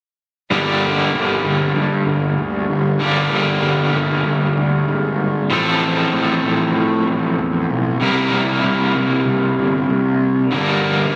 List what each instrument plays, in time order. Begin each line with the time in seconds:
0.51 picked electric bass G1, overdriven electric guitar G2 D3 G3 A#3 D4 G4
1.14 picked electric bass G1
1.44 picked electric bass G1
1.75 picked electric bass G2
2.06 picked electric bass G1
2.38 picked electric bass D2
2.70 picked electric bass G1
2.99 picked electric bass G1, overdriven electric guitar G2 D3 G3 A#3 D4 G4
3.32 picked electric bass G1
3.63 picked electric bass G1
3.94 picked electric bass G1
4.26 picked electric bass G1
4.57 picked electric bass D2
4.88 picked electric bass G#1
5.50 picked electric bass A1, overdriven electric guitar A2 F3 C4 F4 A4
6.14 picked electric bass A1
6.44 picked electric bass A1
6.75 picked electric bass A2
7.07 picked electric bass A1
7.38 picked electric bass E2
7.69 picked electric bass B1
8.00 picked electric bass C2, overdriven electric guitar C3 G3 A#3 E4 A#4
8.32 picked electric bass C2
8.64 picked electric bass C2
8.95 picked electric bass C2
9.26 picked electric bass C2
9.58 picked electric bass G1
9.89 picked electric bass C2
10.51 picked electric bass G1, overdriven electric guitar G2 D3 G3 A#3 D4 A#4